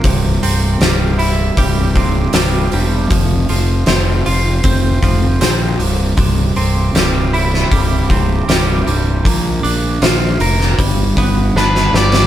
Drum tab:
HH |o-o-o-o-o-o-o-o-|o-o-o-o-o-o-o-o-|o-o-o-o-o-o-o-o-|o-o-o-o-o-o-----|
SD |----o-------o---|----o-------o---|----o--o----o---|----o--o----oooo|
BD |o-------o-o-----|o-------o-o-----|o-------o-o-----|o-------o-o-----|